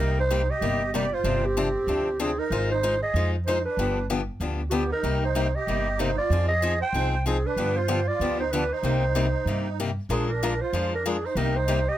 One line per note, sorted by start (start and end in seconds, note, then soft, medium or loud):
0.00 0.49 C2 medium
0.00 0.18 C3 medium
0.00 0.19 G3 medium
0.00 0.18 A#3 medium
0.00 0.16 D#4 medium
0.00 0.19 D#4 medium
0.00 0.19 G4 medium
0.00 0.17 A#4 medium
0.18 0.47 D#4 medium
0.18 0.52 C5 medium
0.30 0.41 C3 medium
0.30 0.41 G3 medium
0.30 0.41 A#3 medium
0.30 0.41 D#4 medium
0.30 0.41 G4 medium
0.49 0.91 G4 medium
0.49 0.94 D#5 medium
0.61 1.12 G1 medium
0.61 0.81 C3 medium
0.61 0.81 G3 medium
0.61 0.82 A#3 medium
0.61 0.82 D#4 medium
0.61 0.82 G4 medium
0.92 1.04 C3 medium
0.92 1.05 G3 medium
0.92 1.04 A#3 medium
0.92 1.05 D#4 medium
0.92 1.10 G4 medium
0.92 1.05 G4 medium
0.92 1.15 D5 medium
1.11 1.43 F4 medium
1.11 1.47 C5 loud
1.24 1.75 G1 medium
1.24 1.44 C3 medium
1.24 1.44 F3 medium
1.24 1.45 C4 medium
1.24 1.44 D4 medium
1.24 1.45 G4 medium
1.44 2.17 C4 medium
1.44 2.20 G4 medium
1.57 1.67 C3 medium
1.57 1.67 F3 medium
1.57 1.67 C4 medium
1.57 1.67 D4 medium
1.57 1.67 G4 medium
1.87 2.38 D2 medium
1.87 2.08 C3 medium
1.87 2.08 F3 medium
1.87 2.08 C4 medium
1.87 2.08 D4 medium
1.87 2.08 G4 medium
2.19 2.30 C3 medium
2.19 2.30 F3 medium
2.19 2.36 C4 medium
2.19 2.30 C4 medium
2.19 2.30 D4 medium
2.19 2.30 G4 medium
2.19 2.40 G#4 medium
2.37 2.68 D#4 medium
2.37 2.70 A#4 medium
2.50 3.01 G#1 medium
2.50 2.71 G#3 medium
2.50 2.71 D#4 medium
2.50 2.71 F4 medium
2.50 2.71 C5 medium
2.70 2.99 D#4 medium
2.70 3.00 C5 medium
2.83 2.94 G#3 medium
2.83 2.94 D#4 medium
2.83 2.94 F4 medium
2.83 2.94 C5 medium
3.01 3.30 G#4 medium
3.01 3.31 D#5 medium
3.14 3.64 F2 medium
3.14 3.35 G#3 medium
3.14 3.35 D#4 medium
3.14 3.35 F4 medium
3.14 3.35 C5 medium
3.46 3.57 G#3 medium
3.46 3.63 D#4 medium
3.46 3.57 D#4 medium
3.46 3.58 F4 medium
3.46 3.63 C5 medium
3.46 3.58 C5 medium
3.65 4.06 D4 medium
3.65 4.06 B4 medium
3.77 4.28 G1 medium
3.77 3.98 D3 medium
3.77 3.98 F3 medium
3.77 3.98 B3 medium
3.77 3.98 D4 medium
3.77 3.98 G4 medium
4.10 4.20 D3 medium
4.10 4.20 F3 medium
4.10 4.20 B3 medium
4.10 4.20 D4 medium
4.10 4.20 G4 medium
4.40 4.91 D2 medium
4.40 4.60 D3 medium
4.40 4.61 F3 medium
4.40 4.61 B3 medium
4.40 4.60 D4 medium
4.40 4.61 G4 medium
4.69 4.82 D3 medium
4.69 4.82 F3 medium
4.69 4.72 G#3 soft
4.69 4.83 B3 medium
4.69 4.91 B3 medium
4.69 4.83 D4 medium
4.69 4.76 F#4 medium
4.69 4.83 G4 medium
4.75 4.91 G4 medium
4.90 5.20 D#4 medium
4.90 5.21 A#4 medium
5.03 5.54 C2 medium
5.03 5.24 C3 medium
5.03 5.23 G3 medium
5.03 5.24 A#3 medium
5.03 5.24 D#4 medium
5.03 5.24 G4 medium
5.22 5.52 D#4 medium
5.22 5.57 C5 medium
5.35 5.46 C3 medium
5.35 5.46 G3 medium
5.35 5.46 A#3 medium
5.35 5.46 D#4 medium
5.35 5.46 G4 medium
5.55 5.99 G4 medium
5.55 6.01 D#5 medium
5.67 6.18 G1 medium
5.67 5.87 C3 medium
5.67 5.87 G3 medium
5.67 5.87 A#3 medium
5.67 5.88 D#4 medium
5.67 5.88 G4 medium
5.98 6.10 C3 medium
5.98 6.10 G3 medium
5.98 6.10 A#3 medium
5.98 6.17 D#4 medium
5.98 6.10 D#4 medium
5.98 6.10 G4 medium
5.98 6.17 C5 medium
6.17 6.46 F4 medium
6.17 6.47 D5 medium
6.30 6.81 F2 medium
6.30 6.51 F3 medium
6.30 6.51 C4 medium
6.30 6.51 D#4 medium
6.30 6.51 G#4 medium
6.48 6.79 G#4 medium
6.48 6.78 D#5 medium
6.62 6.73 F3 medium
6.62 6.73 C4 medium
6.62 6.73 D#4 medium
6.62 6.73 G#4 medium
6.81 7.22 C5 medium
6.81 7.23 G5 medium
6.93 7.44 C2 medium
6.93 7.14 F3 medium
6.93 7.14 C4 medium
6.93 7.14 D#4 medium
6.93 7.14 G#4 medium
7.25 7.36 F3 medium
7.25 7.43 C4 medium
7.25 7.36 C4 medium
7.25 7.37 D#4 medium
7.25 7.48 G#4 medium
7.25 7.37 G#4 medium
7.43 7.75 D4 medium
7.43 7.78 B4 medium
7.56 8.07 G2 medium
7.56 7.77 D3 medium
7.56 7.77 F3 medium
7.56 7.77 B3 medium
7.56 7.77 D4 medium
7.56 7.77 G4 medium
7.75 8.06 F4 medium
7.75 8.09 C5 medium
7.88 7.99 D3 medium
7.88 7.99 F3 medium
7.88 7.99 B3 medium
7.88 7.99 D4 medium
7.88 7.99 G4 medium
8.08 8.39 F4 medium
8.08 8.39 D5 medium
8.20 8.70 D2 medium
8.20 8.40 D3 medium
8.20 8.41 F3 medium
8.20 8.40 B3 medium
8.20 8.41 D4 medium
8.20 8.41 G4 medium
8.39 8.51 D#4 medium
8.39 8.54 C5 medium
8.52 8.63 D3 medium
8.52 8.63 F3 medium
8.52 8.63 B3 medium
8.52 8.71 D4 medium
8.52 8.63 D4 medium
8.52 8.63 G4 medium
8.52 8.74 B4 medium
8.72 9.79 D#4 medium
8.72 9.79 C5 medium
8.83 9.34 C2 medium
8.83 9.03 C3 medium
8.83 9.04 G3 medium
8.83 9.04 A#3 medium
8.83 9.04 D#4 medium
8.83 9.04 G4 medium
9.15 9.26 C3 medium
9.15 9.26 G3 medium
9.15 9.26 A#3 medium
9.15 9.26 D#4 medium
9.15 9.26 G4 medium
9.45 9.96 G2 medium
9.45 9.67 C3 medium
9.45 9.67 G3 medium
9.45 9.67 A#3 medium
9.45 9.67 D#4 medium
9.45 9.67 G4 medium
9.80 9.90 C3 medium
9.80 9.90 G3 medium
9.80 9.90 A#3 medium
9.80 9.90 D#4 medium
9.80 9.90 G4 medium
10.09 10.60 A#1 medium
10.09 10.30 F3 medium
10.09 10.30 G#3 medium
10.09 10.29 D4 medium
10.09 10.27 D4 medium
10.09 10.30 F4 medium
10.09 10.31 G#4 medium
10.09 10.30 A#4 medium
10.28 10.60 D4 medium
10.28 10.63 A#4 medium
10.43 10.53 F3 medium
10.43 10.53 G#3 medium
10.43 10.53 D4 medium
10.43 10.53 F4 medium
10.43 10.53 A#4 medium
10.60 10.92 F4 medium
10.60 10.92 C5 medium
10.73 11.23 F2 medium
10.73 10.93 F3 medium
10.73 10.93 G#3 medium
10.73 10.93 D4 medium
10.73 10.93 F4 medium
10.73 10.93 A#4 medium
10.92 11.04 D4 medium
10.92 11.09 A#4 medium
11.05 11.16 F3 medium
11.05 11.16 G#3 medium
11.05 11.24 D4 medium
11.05 11.16 D4 medium
11.05 11.16 F4 medium
11.05 11.27 G#4 medium
11.05 11.16 A#4 medium
11.23 11.34 D#4 medium
11.23 11.38 C5 medium
11.35 11.86 C2 medium
11.35 11.56 C3 medium
11.35 11.56 G3 medium
11.35 11.56 A#3 medium
11.35 11.53 D#4 medium
11.35 11.56 D#4 medium
11.35 11.56 G4 medium
11.35 11.57 A#4 medium
11.55 11.86 D#4 medium
11.55 11.90 C5 medium
11.68 11.79 C3 medium
11.68 11.78 G3 medium
11.68 11.78 A#3 medium
11.68 11.79 D#4 medium
11.68 11.79 G4 medium
11.86 11.98 G4 medium
11.86 11.98 D#5 medium